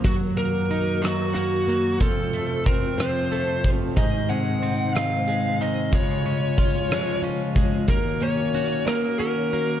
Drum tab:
HH |xxxxxx|xxxxxx|xxxxxx|xxxxxx|
SD |---r--|---r--|---r--|---r--|
BD |o-----|o-o--o|o-----|o-o--o|

HH |xxxxxx|
SD |---r--|
BD |o-----|